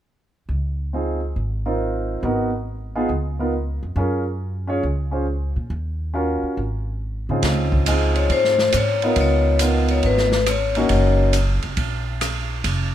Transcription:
0.49 upright bass C#2
0.93 grand piano C4 D#4 F4 G#4
1.36 upright bass G#1
1.66 grand piano C4 D#4 F4 A#4
2.23 upright bass G#1, grand piano B3 D#4 F#4 A#4
2.95 grand piano B3 D#4 F4 G#4
3.09 upright bass C#2
3.39 grand piano B3 D#4 F4 A#4
3.83 upright bass F2
3.96 upright bass F#2, grand piano C#4 F4 G#4 A#4
4.67 grand piano C#4 F4 G#4 C#5
4.83 upright bass C#2
5.11 grand piano C#4 F4 G#4 C5
5.56 upright bass A#2
5.70 upright bass D#2
6.14 grand piano C#4 F4 F#4 A#4
6.43 muted upright bass stroke
6.57 upright bass G#1
7.29 upright bass G#2, grand piano C#3 C4 D#4 F4 G#4
7.42 upright bass C#2, kick, snare, ride
7.72 kick
7.86 grand piano C4 D#4 F4 G#4, hi-hat pedal, ride
8.15 vibraphone C#5, ride
8.30 upright bass G#2, vibraphone C5, kick, ride
8.44 snare
8.59 snare
8.72 upright bass G#2, cross-stick, hi-hat pedal, ride
8.77 vibraphone C#5
9.02 grand piano B3 D#4 F4 A#4, ride
9.16 upright bass C#2, kick, ride
9.21 vibraphone C#5
9.59 grand piano B3 D#4 F4 A#4, hi-hat pedal, ride
9.88 vibraphone C#5, ride
10.03 upright bass G#1, vibraphone B4, kick, ride
10.18 snare
10.32 snare
10.46 vibraphone C#5, cross-stick, hi-hat pedal, ride
10.75 grand piano A#3 C#4 D#4 F#4, ride
10.89 upright bass F#1, vibraphone C#5, kick, ride
11.33 hi-hat pedal, ride
11.62 upright bass F1, ride
11.77 upright bass A#1, kick, ride
12.21 cross-stick, hi-hat pedal, ride
12.64 upright bass F1, kick, ride

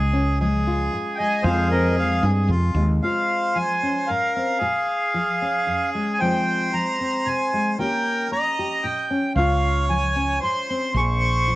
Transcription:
Already playing: fretless electric bass C#2, nylon-string guitar C#3 G#3 F4, harmonica G#4
0.13 nylon-string guitar C#4
0.40 nylon-string guitar F3 G#3, harmonica G#4
0.67 nylon-string guitar F4
0.93 nylon-string guitar G#2
1.15 accordion D#5 G5
1.19 nylon-string guitar G#3, accordion G#5
1.43 fretless electric bass F2, nylon-string guitar F2 F3 G#3, harmonica G#4, accordion C5 F5
1.47 nylon-string guitar C4 G#4
1.71 nylon-string guitar C4, accordion A#4 D#5
1.98 nylon-string guitar F3 G#3, accordion F5
2.23 fretless electric bass G2, nylon-string guitar G#4
2.49 fretless electric bass F2, nylon-string guitar C3, harmonica F4
2.75 fretless electric bass D#2, nylon-string guitar G#3
3.03 nylon-string guitar C#3 F4, harmonica C5, accordion F5
3.55 nylon-string guitar F3, accordion G#5
3.83 nylon-string guitar C#4
4.07 nylon-string guitar G#2, harmonica A#4, accordion F5
4.35 nylon-string guitar C4, accordion F5
4.60 nylon-string guitar A#2 G#4, harmonica G#4
5.14 nylon-string guitar F3
5.42 nylon-string guitar C#4
5.67 nylon-string guitar F2
5.95 nylon-string guitar G#3
6.14 accordion G#5
6.20 nylon-string guitar F2 F3 G#3 C4 G#4, harmonica C5, accordion G5
6.73 nylon-string guitar F3, accordion A#5
7.00 nylon-string guitar C4
7.25 nylon-string guitar C3, accordion G#5
7.53 nylon-string guitar G#3
7.78 nylon-string guitar D#3 A#3 C#4 G4, harmonica A#4, accordion G5
8.32 nylon-string guitar A#3, harmonica D#5, accordion A#5
8.59 nylon-string guitar G4
8.83 nylon-string guitar A#2, accordion G5
9.11 nylon-string guitar C#4
9.36 fretless electric bass C#2, nylon-string guitar C#3 F4, harmonica C#5, accordion F5
9.90 nylon-string guitar F3, accordion G#5
10.16 nylon-string guitar C#4
10.42 nylon-string guitar G#2, harmonica C5, accordion C6
10.69 nylon-string guitar C4, accordion C6
10.94 fretless electric bass A#1, nylon-string guitar A#2 G#4, harmonica C5, accordion C#6
11.48 nylon-string guitar F3

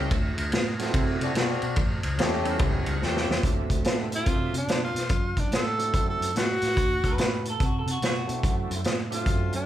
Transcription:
Already playing: horn section A3 C#4 G4, tonewheel organ E5 G5
0.11 fingered electric bass D2, kick, ride
0.37 fingered electric bass D2, ride
0.52 fingered electric bass A2, snare, ride
0.79 tonewheel organ F#3 A3 C4 E4, snare, ride
0.94 fingered electric bass C3, kick, ride
1.20 fingered electric bass C3, horn section C4 D4 F#4, ride
1.35 fingered electric bass B2, horn section C4 D4 F#4, snare, ride
1.62 fingered electric bass B2, ride
1.76 fingered electric bass A1, kick, ride
2.03 fingered electric bass C#2, ride
2.17 fingered electric bass E2, horn section A3 C#4 G4, snare, ride
2.43 tonewheel organ G3 B3 C#4 E4 D#5, ride
2.48 tonewheel organ C5 E5
2.59 fingered electric bass C#2, tonewheel organ C5 E5, kick, ride
2.77 tonewheel organ C#5 F#5
2.86 fingered electric bass C#2, ride
2.91 tonewheel organ C#5 F#5
3.01 fingered electric bass E2, horn section A3 C#4 G4, tonewheel organ G5, snare
3.05 tonewheel organ E5
3.17 snare
3.29 fingered electric bass E2, snare
3.43 fingered electric bass D2, tonewheel organ F#3 A3 C4 D4 E5, kick, closed hi-hat
3.70 fingered electric bass D2, kick, closed hi-hat
3.84 fingered electric bass A2, snare, closed hi-hat
4.12 tenor saxophone F4, closed hi-hat
4.26 fingered electric bass C3, kick, closed hi-hat
4.53 fingered electric bass C3, closed hi-hat
4.58 tenor saxophone D4
4.68 fingered electric bass B2, snare, closed hi-hat
4.84 tenor saxophone F4
4.94 fingered electric bass B2, snare, closed hi-hat
5.09 fingered electric bass F#2, kick, closed hi-hat
5.37 fingered electric bass F#2, tenor saxophone D4, kick, closed hi-hat
5.52 fingered electric bass A2, tenor saxophone A4, snare, closed hi-hat
5.78 tonewheel organ F#3 A3 C4 D4 E4, closed hi-hat
5.94 fingered electric bass F#2, kick, closed hi-hat
6.09 tenor saxophone A4
6.20 fingered electric bass F#2, closed hi-hat
6.35 fingered electric bass A2, tenor saxophone F#4, snare, closed hi-hat
6.62 fingered electric bass A2, snare, closed hi-hat
6.77 fingered electric bass D2, kick, closed hi-hat
7.04 fingered electric bass D2, clean electric guitar B4, kick, closed hi-hat
7.18 fingered electric bass A2, snare, closed hi-hat
7.45 closed hi-hat
7.50 clean electric guitar A4
7.60 fingered electric bass C3, clean electric guitar F#4, kick, closed hi-hat
7.79 clean electric guitar A4
7.86 fingered electric bass C3, closed hi-hat
7.91 clean electric guitar F#4
8.02 fingered electric bass B2, clean electric guitar F#4, snare, closed hi-hat
8.27 fingered electric bass B2, tonewheel organ F#3 A3 C4 D4 E4, closed hi-hat
8.43 fingered electric bass F#2, kick, closed hi-hat
8.70 fingered electric bass F#2, closed hi-hat
8.84 fingered electric bass A2, snare, closed hi-hat
9.10 tonewheel organ F#3 A3 C4 D4 E5, tenor saxophone F4, closed hi-hat
9.26 fingered electric bass F#2, kick, closed hi-hat
9.52 fingered electric bass F#2, tenor saxophone D4, closed hi-hat

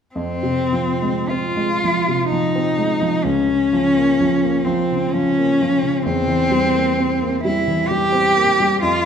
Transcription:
0.15 grand piano F2, cello C4
0.43 grand piano C3
0.72 grand piano F3
1.02 grand piano G#3
1.29 grand piano C4, cello F4
1.57 grand piano G#3
1.84 grand piano F3
2.08 grand piano C3
2.29 grand piano F3, cello D#4
2.55 grand piano C4
2.78 grand piano G#3
3.01 grand piano F3
3.24 grand piano C#2, cello C#4
3.49 grand piano C#3
3.73 grand piano F3
3.97 grand piano A#3
4.20 grand piano F3
4.43 grand piano A#3
4.65 grand piano F3, cello C4
4.92 grand piano C#3
5.10 grand piano F3, cello C#4
5.38 grand piano A#3
5.61 grand piano F3
5.82 grand piano C#3
6.02 grand piano E2, cello C4
6.27 grand piano E3
6.51 grand piano G3
6.74 grand piano A#3
6.99 grand piano C4
7.21 grand piano A#3
7.43 grand piano G3, cello E4
7.67 grand piano E3
7.88 grand piano G3, cello G4
8.12 grand piano C4
8.36 grand piano A#3
8.60 grand piano G3
8.81 grand piano F2, cello F4

